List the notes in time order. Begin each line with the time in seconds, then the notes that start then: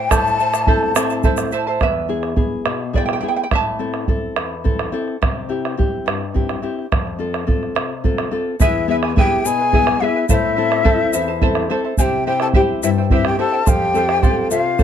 Already playing: E4 G5 A5
0.09 A2 E4 A4 C5 E5 A5, bombo rim, bombo low, shaker
0.27 shaker
0.40 E4 C5 E5 A5, shaker
0.53 E4 C5 A5, bombo rim, shaker
0.67 C4 E4 A4 C5 E5 A5, bombo low
0.83 bombo rim
0.95 C4 E4 A4 C5 E5 A5, bombo rim, shaker
1.10 E4 C5 A5, shaker
1.23 E4 A4 C5 E5 A5, bombo low, shaker
1.37 bombo rim, shaker
1.52 E4 C5 E5 A5, shaker
1.67 E4 C5 A5
1.80 E2 B4 E5, bombo rim, bombo low
2.08 B3 E4 G#4, bombo rim
2.23 bombo rim
2.36 B3 E4 G#4, bombo low
2.66 B2, bombo rim
2.93 B3 E4 G#4 D5, bombo low
2.98 G5
3.06 G5, bombo rim
3.13 G5
3.21 B3 E4 G#4 G5, bombo rim
3.28 G5
3.36 G5, bombo rim
3.44 G5
3.51 A2 E5 A5, bombo rim, bombo low
3.79 C4 E4 A4, bombo rim
3.94 bombo rim
4.08 C4 E4 A4, bombo low
4.36 E2, bombo rim
4.64 C4 E4 A4, bombo low
4.79 bombo rim
4.92 C4 E4 A4, bombo rim
5.08 bombo rim
5.22 C3, bombo rim, bombo low
5.49 C4 E4 G4, bombo rim
5.65 bombo rim
5.77 C4 E4 G4, bombo low
6.06 G2, bombo rim
6.34 C4 E4 G4, bombo low
6.49 bombo rim
6.62 C4 E4 G4, bombo rim
6.79 bombo rim
6.92 F2, bombo rim, bombo low
7.07 bombo rim
7.18 C4 F4 A4
7.34 bombo rim
7.47 C4 F4 A4, bombo rim, bombo low
7.63 bombo rim
7.75 C3, bombo rim
8.04 C4 F4 A4, bombo low
8.18 bombo rim
8.31 C4 F4 A4
8.59 E2 E4 G#4 B4 E5 G#5, bombo low, shaker
8.64 F4
8.68 E4
8.88 B3 E4 G#4 B4 E5 G#5
9.03 E4 B4 G#5, bombo rim
9.16 B3 E4 G4 G#4 B4 E5 G5 G#5, bombo low
9.45 B2 E4 G#4 B4 E5 G#5, shaker
9.60 E4 B4 G#5
9.72 B3 E4 G#4 B4 E5 G#5, bombo low
9.87 bombo rim
10.00 B3 E4 G#4 B4 E5 F5 G#5, bombo rim
10.16 E4 B4 G#5
10.29 A2 E4 A4 C5 E5 F5 A5, bombo low, shaker
10.33 E5
10.56 C4 E4 A4 C5 E5 A5
10.70 E4 C5 A5, bombo rim
10.84 C4 E4 A4 C5 E5 A5, bombo low
11.13 E2 E4 C5 E5 A5, shaker
11.28 E4 C5 A5
11.41 C4 E4 A4 C5 E5 A5, bombo low
11.55 bombo rim
11.69 C4 E4 A4 C5 E5 A5, bombo rim
11.84 E4 C5 A5
11.97 C3 E4 G4 C5 E5 G5 G#5, bombo low, shaker
12.02 G5
12.26 C4 E4 G4 C5 E5 G5
12.40 E4 A4 C5 G5 A5, bombo rim
12.54 C4 E4 G4 C5 E5 G5, bombo low
12.83 G2 E4 C5 E5 G5, shaker
12.98 E4 C5 G5
13.10 C4 E4 G4 C5 E5 G5, bombo low
13.24 G4 G5, bombo rim
13.38 C4 E4 G4 A4 C5 E5 G5 A5, bombo rim
13.52 E4 C5 G5
13.65 F2 G4 A4 C5 F5 G5, bombo rim, bombo low, shaker
13.94 C4 F4 A4 C5 F5, shaker
14.09 C5 F5, bombo rim
14.22 C4 F4 A4 C5 F5, bombo rim, bombo low, shaker
14.50 C3 F4 A4 C5 F5, shaker
14.65 C5 F5
14.79 C4 F4 A4 C5 F5, bombo rim, bombo low, shaker